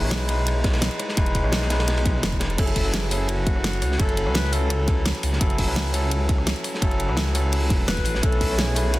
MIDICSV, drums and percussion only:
0, 0, Header, 1, 2, 480
1, 0, Start_track
1, 0, Tempo, 352941
1, 1595, Time_signature, 4, 2, 24, 8
1, 12230, End_track
2, 0, Start_track
2, 0, Title_t, "Drums"
2, 147, Note_on_c, 9, 51, 83
2, 152, Note_on_c, 9, 38, 119
2, 152, Note_on_c, 9, 42, 97
2, 159, Note_off_c, 9, 38, 0
2, 159, Note_on_c, 9, 38, 118
2, 283, Note_off_c, 9, 51, 0
2, 288, Note_off_c, 9, 42, 0
2, 295, Note_off_c, 9, 38, 0
2, 389, Note_on_c, 9, 51, 70
2, 392, Note_on_c, 9, 42, 70
2, 525, Note_off_c, 9, 51, 0
2, 528, Note_off_c, 9, 42, 0
2, 635, Note_on_c, 9, 42, 94
2, 651, Note_on_c, 9, 51, 89
2, 771, Note_off_c, 9, 42, 0
2, 787, Note_off_c, 9, 51, 0
2, 870, Note_on_c, 9, 51, 72
2, 874, Note_on_c, 9, 36, 99
2, 875, Note_on_c, 9, 42, 67
2, 881, Note_on_c, 9, 38, 112
2, 999, Note_off_c, 9, 51, 0
2, 999, Note_on_c, 9, 51, 93
2, 1001, Note_off_c, 9, 38, 0
2, 1001, Note_on_c, 9, 37, 35
2, 1001, Note_on_c, 9, 38, 110
2, 1010, Note_off_c, 9, 36, 0
2, 1011, Note_off_c, 9, 42, 0
2, 1105, Note_off_c, 9, 38, 0
2, 1105, Note_on_c, 9, 38, 115
2, 1113, Note_off_c, 9, 38, 0
2, 1113, Note_on_c, 9, 38, 114
2, 1113, Note_on_c, 9, 42, 96
2, 1120, Note_off_c, 9, 51, 0
2, 1120, Note_on_c, 9, 51, 91
2, 1137, Note_off_c, 9, 37, 0
2, 1239, Note_off_c, 9, 42, 0
2, 1239, Note_on_c, 9, 42, 40
2, 1249, Note_off_c, 9, 38, 0
2, 1256, Note_off_c, 9, 51, 0
2, 1351, Note_on_c, 9, 51, 62
2, 1354, Note_off_c, 9, 42, 0
2, 1354, Note_on_c, 9, 37, 37
2, 1354, Note_on_c, 9, 42, 69
2, 1475, Note_on_c, 9, 38, 48
2, 1487, Note_off_c, 9, 51, 0
2, 1490, Note_off_c, 9, 37, 0
2, 1490, Note_off_c, 9, 42, 0
2, 1593, Note_on_c, 9, 42, 101
2, 1595, Note_on_c, 9, 36, 117
2, 1598, Note_on_c, 9, 51, 94
2, 1611, Note_off_c, 9, 38, 0
2, 1719, Note_off_c, 9, 42, 0
2, 1719, Note_on_c, 9, 42, 40
2, 1731, Note_off_c, 9, 36, 0
2, 1734, Note_off_c, 9, 51, 0
2, 1834, Note_off_c, 9, 42, 0
2, 1834, Note_on_c, 9, 42, 66
2, 1835, Note_on_c, 9, 36, 60
2, 1848, Note_on_c, 9, 51, 67
2, 1962, Note_on_c, 9, 37, 36
2, 1970, Note_off_c, 9, 42, 0
2, 1971, Note_off_c, 9, 36, 0
2, 1984, Note_off_c, 9, 51, 0
2, 2067, Note_on_c, 9, 38, 110
2, 2075, Note_off_c, 9, 38, 0
2, 2075, Note_on_c, 9, 38, 116
2, 2075, Note_on_c, 9, 42, 96
2, 2076, Note_on_c, 9, 51, 89
2, 2098, Note_off_c, 9, 37, 0
2, 2198, Note_off_c, 9, 38, 0
2, 2198, Note_on_c, 9, 38, 54
2, 2202, Note_on_c, 9, 37, 34
2, 2211, Note_off_c, 9, 42, 0
2, 2212, Note_off_c, 9, 51, 0
2, 2312, Note_on_c, 9, 51, 74
2, 2315, Note_off_c, 9, 38, 0
2, 2315, Note_on_c, 9, 38, 106
2, 2317, Note_on_c, 9, 42, 71
2, 2338, Note_off_c, 9, 37, 0
2, 2440, Note_off_c, 9, 38, 0
2, 2440, Note_on_c, 9, 38, 102
2, 2445, Note_off_c, 9, 51, 0
2, 2445, Note_on_c, 9, 51, 85
2, 2453, Note_off_c, 9, 42, 0
2, 2550, Note_off_c, 9, 51, 0
2, 2550, Note_on_c, 9, 51, 78
2, 2554, Note_on_c, 9, 37, 34
2, 2554, Note_on_c, 9, 42, 96
2, 2561, Note_off_c, 9, 38, 0
2, 2561, Note_on_c, 9, 38, 116
2, 2685, Note_off_c, 9, 51, 0
2, 2685, Note_on_c, 9, 51, 78
2, 2690, Note_off_c, 9, 37, 0
2, 2690, Note_off_c, 9, 42, 0
2, 2697, Note_off_c, 9, 38, 0
2, 2795, Note_on_c, 9, 36, 99
2, 2795, Note_on_c, 9, 42, 68
2, 2807, Note_off_c, 9, 51, 0
2, 2807, Note_on_c, 9, 51, 62
2, 2931, Note_off_c, 9, 36, 0
2, 2931, Note_off_c, 9, 42, 0
2, 2943, Note_off_c, 9, 51, 0
2, 3032, Note_on_c, 9, 51, 78
2, 3035, Note_on_c, 9, 38, 120
2, 3035, Note_on_c, 9, 42, 98
2, 3160, Note_off_c, 9, 42, 0
2, 3160, Note_on_c, 9, 36, 58
2, 3160, Note_on_c, 9, 42, 40
2, 3168, Note_off_c, 9, 51, 0
2, 3171, Note_off_c, 9, 38, 0
2, 3266, Note_on_c, 9, 38, 95
2, 3273, Note_on_c, 9, 51, 78
2, 3275, Note_off_c, 9, 42, 0
2, 3275, Note_on_c, 9, 42, 70
2, 3296, Note_off_c, 9, 36, 0
2, 3400, Note_off_c, 9, 42, 0
2, 3400, Note_on_c, 9, 42, 37
2, 3402, Note_off_c, 9, 38, 0
2, 3409, Note_off_c, 9, 51, 0
2, 3514, Note_off_c, 9, 42, 0
2, 3514, Note_on_c, 9, 42, 101
2, 3514, Note_on_c, 9, 49, 77
2, 3515, Note_on_c, 9, 36, 115
2, 3519, Note_on_c, 9, 51, 94
2, 3638, Note_off_c, 9, 42, 0
2, 3638, Note_on_c, 9, 42, 38
2, 3650, Note_off_c, 9, 49, 0
2, 3651, Note_off_c, 9, 36, 0
2, 3655, Note_off_c, 9, 51, 0
2, 3751, Note_on_c, 9, 46, 83
2, 3752, Note_off_c, 9, 42, 0
2, 3752, Note_on_c, 9, 42, 65
2, 3755, Note_on_c, 9, 36, 62
2, 3887, Note_off_c, 9, 46, 0
2, 3888, Note_off_c, 9, 42, 0
2, 3891, Note_off_c, 9, 36, 0
2, 3993, Note_on_c, 9, 38, 120
2, 3993, Note_on_c, 9, 42, 97
2, 3997, Note_off_c, 9, 38, 0
2, 3997, Note_on_c, 9, 38, 114
2, 3997, Note_on_c, 9, 51, 79
2, 4129, Note_off_c, 9, 42, 0
2, 4133, Note_off_c, 9, 38, 0
2, 4133, Note_off_c, 9, 51, 0
2, 4233, Note_on_c, 9, 46, 78
2, 4241, Note_on_c, 9, 51, 71
2, 4369, Note_off_c, 9, 46, 0
2, 4377, Note_off_c, 9, 51, 0
2, 4468, Note_on_c, 9, 51, 92
2, 4472, Note_on_c, 9, 42, 92
2, 4604, Note_off_c, 9, 51, 0
2, 4608, Note_off_c, 9, 42, 0
2, 4714, Note_on_c, 9, 36, 106
2, 4714, Note_on_c, 9, 42, 70
2, 4714, Note_on_c, 9, 51, 71
2, 4840, Note_on_c, 9, 37, 37
2, 4850, Note_off_c, 9, 36, 0
2, 4850, Note_off_c, 9, 42, 0
2, 4850, Note_off_c, 9, 51, 0
2, 4952, Note_on_c, 9, 51, 88
2, 4954, Note_on_c, 9, 38, 121
2, 4954, Note_on_c, 9, 42, 98
2, 4962, Note_off_c, 9, 38, 0
2, 4962, Note_on_c, 9, 38, 104
2, 4976, Note_off_c, 9, 37, 0
2, 5078, Note_off_c, 9, 42, 0
2, 5078, Note_on_c, 9, 42, 41
2, 5088, Note_off_c, 9, 51, 0
2, 5098, Note_off_c, 9, 38, 0
2, 5192, Note_on_c, 9, 51, 68
2, 5195, Note_on_c, 9, 37, 38
2, 5195, Note_on_c, 9, 46, 77
2, 5214, Note_off_c, 9, 42, 0
2, 5326, Note_on_c, 9, 38, 51
2, 5328, Note_off_c, 9, 51, 0
2, 5331, Note_off_c, 9, 37, 0
2, 5331, Note_off_c, 9, 46, 0
2, 5433, Note_on_c, 9, 51, 96
2, 5434, Note_on_c, 9, 36, 122
2, 5434, Note_on_c, 9, 42, 95
2, 5462, Note_off_c, 9, 38, 0
2, 5561, Note_off_c, 9, 42, 0
2, 5561, Note_on_c, 9, 42, 37
2, 5569, Note_off_c, 9, 51, 0
2, 5570, Note_off_c, 9, 36, 0
2, 5673, Note_on_c, 9, 51, 65
2, 5675, Note_off_c, 9, 42, 0
2, 5675, Note_on_c, 9, 42, 63
2, 5801, Note_on_c, 9, 37, 36
2, 5809, Note_off_c, 9, 51, 0
2, 5811, Note_off_c, 9, 42, 0
2, 5908, Note_on_c, 9, 51, 87
2, 5916, Note_on_c, 9, 38, 108
2, 5918, Note_off_c, 9, 38, 0
2, 5918, Note_on_c, 9, 38, 122
2, 5918, Note_on_c, 9, 42, 95
2, 5937, Note_off_c, 9, 37, 0
2, 6039, Note_off_c, 9, 38, 0
2, 6039, Note_on_c, 9, 38, 59
2, 6044, Note_off_c, 9, 51, 0
2, 6054, Note_off_c, 9, 42, 0
2, 6153, Note_on_c, 9, 51, 73
2, 6158, Note_on_c, 9, 46, 80
2, 6175, Note_off_c, 9, 38, 0
2, 6289, Note_off_c, 9, 51, 0
2, 6294, Note_off_c, 9, 46, 0
2, 6395, Note_on_c, 9, 51, 84
2, 6396, Note_on_c, 9, 37, 34
2, 6396, Note_on_c, 9, 42, 95
2, 6531, Note_off_c, 9, 51, 0
2, 6532, Note_off_c, 9, 37, 0
2, 6532, Note_off_c, 9, 42, 0
2, 6633, Note_on_c, 9, 42, 68
2, 6635, Note_on_c, 9, 36, 107
2, 6642, Note_on_c, 9, 51, 66
2, 6769, Note_off_c, 9, 42, 0
2, 6771, Note_off_c, 9, 36, 0
2, 6778, Note_off_c, 9, 51, 0
2, 6871, Note_on_c, 9, 51, 77
2, 6876, Note_on_c, 9, 38, 127
2, 6876, Note_on_c, 9, 42, 96
2, 6884, Note_off_c, 9, 38, 0
2, 6884, Note_on_c, 9, 38, 119
2, 7001, Note_off_c, 9, 42, 0
2, 7001, Note_on_c, 9, 42, 39
2, 7007, Note_off_c, 9, 51, 0
2, 7016, Note_off_c, 9, 38, 0
2, 7016, Note_on_c, 9, 38, 39
2, 7114, Note_on_c, 9, 51, 67
2, 7115, Note_on_c, 9, 46, 76
2, 7137, Note_off_c, 9, 42, 0
2, 7152, Note_off_c, 9, 38, 0
2, 7246, Note_on_c, 9, 38, 52
2, 7250, Note_off_c, 9, 51, 0
2, 7251, Note_off_c, 9, 46, 0
2, 7356, Note_on_c, 9, 36, 127
2, 7356, Note_on_c, 9, 42, 89
2, 7363, Note_on_c, 9, 51, 85
2, 7382, Note_off_c, 9, 38, 0
2, 7481, Note_off_c, 9, 42, 0
2, 7481, Note_on_c, 9, 42, 36
2, 7492, Note_off_c, 9, 36, 0
2, 7499, Note_off_c, 9, 51, 0
2, 7594, Note_on_c, 9, 46, 85
2, 7595, Note_off_c, 9, 42, 0
2, 7595, Note_on_c, 9, 42, 61
2, 7596, Note_on_c, 9, 36, 68
2, 7730, Note_off_c, 9, 46, 0
2, 7731, Note_off_c, 9, 42, 0
2, 7732, Note_off_c, 9, 36, 0
2, 7836, Note_on_c, 9, 38, 127
2, 7836, Note_on_c, 9, 42, 91
2, 7838, Note_off_c, 9, 38, 0
2, 7838, Note_on_c, 9, 38, 100
2, 7839, Note_on_c, 9, 51, 88
2, 7972, Note_off_c, 9, 42, 0
2, 7974, Note_off_c, 9, 38, 0
2, 7975, Note_off_c, 9, 51, 0
2, 8075, Note_on_c, 9, 51, 65
2, 8077, Note_on_c, 9, 46, 79
2, 8211, Note_off_c, 9, 51, 0
2, 8213, Note_off_c, 9, 46, 0
2, 8316, Note_on_c, 9, 42, 90
2, 8316, Note_on_c, 9, 51, 86
2, 8452, Note_off_c, 9, 42, 0
2, 8452, Note_off_c, 9, 51, 0
2, 8556, Note_on_c, 9, 36, 114
2, 8556, Note_on_c, 9, 42, 66
2, 8563, Note_on_c, 9, 51, 70
2, 8681, Note_on_c, 9, 37, 38
2, 8692, Note_off_c, 9, 36, 0
2, 8692, Note_off_c, 9, 42, 0
2, 8699, Note_off_c, 9, 51, 0
2, 8793, Note_on_c, 9, 51, 84
2, 8797, Note_on_c, 9, 38, 121
2, 8797, Note_on_c, 9, 42, 94
2, 8804, Note_off_c, 9, 38, 0
2, 8804, Note_on_c, 9, 38, 106
2, 8817, Note_off_c, 9, 37, 0
2, 8922, Note_off_c, 9, 42, 0
2, 8922, Note_on_c, 9, 42, 38
2, 8929, Note_off_c, 9, 51, 0
2, 8940, Note_off_c, 9, 38, 0
2, 9030, Note_on_c, 9, 51, 66
2, 9036, Note_on_c, 9, 37, 36
2, 9036, Note_on_c, 9, 46, 77
2, 9058, Note_off_c, 9, 42, 0
2, 9166, Note_off_c, 9, 51, 0
2, 9172, Note_off_c, 9, 37, 0
2, 9172, Note_off_c, 9, 46, 0
2, 9172, Note_on_c, 9, 38, 50
2, 9272, Note_on_c, 9, 51, 86
2, 9275, Note_on_c, 9, 36, 122
2, 9277, Note_on_c, 9, 42, 90
2, 9308, Note_off_c, 9, 38, 0
2, 9403, Note_off_c, 9, 42, 0
2, 9403, Note_on_c, 9, 42, 36
2, 9408, Note_off_c, 9, 51, 0
2, 9411, Note_off_c, 9, 36, 0
2, 9516, Note_on_c, 9, 51, 63
2, 9518, Note_off_c, 9, 42, 0
2, 9518, Note_on_c, 9, 42, 61
2, 9642, Note_on_c, 9, 37, 36
2, 9652, Note_off_c, 9, 51, 0
2, 9654, Note_off_c, 9, 42, 0
2, 9747, Note_on_c, 9, 38, 101
2, 9751, Note_on_c, 9, 51, 83
2, 9756, Note_off_c, 9, 38, 0
2, 9756, Note_on_c, 9, 38, 125
2, 9756, Note_on_c, 9, 42, 86
2, 9778, Note_off_c, 9, 37, 0
2, 9872, Note_off_c, 9, 38, 0
2, 9872, Note_on_c, 9, 38, 53
2, 9887, Note_off_c, 9, 51, 0
2, 9892, Note_off_c, 9, 42, 0
2, 9995, Note_on_c, 9, 46, 85
2, 9997, Note_on_c, 9, 51, 81
2, 10008, Note_off_c, 9, 38, 0
2, 10131, Note_off_c, 9, 46, 0
2, 10133, Note_off_c, 9, 51, 0
2, 10231, Note_on_c, 9, 46, 72
2, 10238, Note_on_c, 9, 37, 32
2, 10238, Note_on_c, 9, 42, 90
2, 10367, Note_off_c, 9, 46, 0
2, 10374, Note_off_c, 9, 37, 0
2, 10374, Note_off_c, 9, 42, 0
2, 10476, Note_on_c, 9, 36, 112
2, 10477, Note_on_c, 9, 42, 62
2, 10487, Note_on_c, 9, 51, 67
2, 10612, Note_off_c, 9, 36, 0
2, 10613, Note_off_c, 9, 42, 0
2, 10623, Note_off_c, 9, 51, 0
2, 10717, Note_on_c, 9, 38, 127
2, 10717, Note_on_c, 9, 42, 92
2, 10719, Note_off_c, 9, 38, 0
2, 10719, Note_on_c, 9, 38, 108
2, 10721, Note_on_c, 9, 51, 89
2, 10837, Note_off_c, 9, 38, 0
2, 10837, Note_on_c, 9, 38, 40
2, 10840, Note_on_c, 9, 36, 61
2, 10841, Note_off_c, 9, 42, 0
2, 10841, Note_on_c, 9, 42, 37
2, 10857, Note_off_c, 9, 51, 0
2, 10943, Note_on_c, 9, 51, 68
2, 10955, Note_on_c, 9, 46, 77
2, 10973, Note_off_c, 9, 38, 0
2, 10976, Note_off_c, 9, 36, 0
2, 10977, Note_off_c, 9, 42, 0
2, 11079, Note_off_c, 9, 51, 0
2, 11079, Note_on_c, 9, 38, 53
2, 11091, Note_off_c, 9, 46, 0
2, 11192, Note_on_c, 9, 51, 100
2, 11195, Note_on_c, 9, 36, 120
2, 11196, Note_on_c, 9, 42, 90
2, 11215, Note_off_c, 9, 38, 0
2, 11322, Note_off_c, 9, 42, 0
2, 11322, Note_on_c, 9, 42, 36
2, 11328, Note_off_c, 9, 51, 0
2, 11331, Note_off_c, 9, 36, 0
2, 11434, Note_on_c, 9, 36, 65
2, 11438, Note_off_c, 9, 42, 0
2, 11438, Note_on_c, 9, 42, 62
2, 11443, Note_on_c, 9, 46, 75
2, 11570, Note_off_c, 9, 36, 0
2, 11574, Note_off_c, 9, 42, 0
2, 11579, Note_off_c, 9, 46, 0
2, 11674, Note_on_c, 9, 38, 109
2, 11678, Note_off_c, 9, 38, 0
2, 11678, Note_on_c, 9, 38, 124
2, 11678, Note_on_c, 9, 42, 92
2, 11681, Note_on_c, 9, 51, 79
2, 11814, Note_off_c, 9, 38, 0
2, 11814, Note_off_c, 9, 42, 0
2, 11817, Note_off_c, 9, 51, 0
2, 11910, Note_on_c, 9, 51, 66
2, 11918, Note_on_c, 9, 46, 86
2, 12046, Note_off_c, 9, 51, 0
2, 12054, Note_off_c, 9, 46, 0
2, 12156, Note_on_c, 9, 42, 92
2, 12158, Note_on_c, 9, 51, 93
2, 12230, Note_off_c, 9, 42, 0
2, 12230, Note_off_c, 9, 51, 0
2, 12230, End_track
0, 0, End_of_file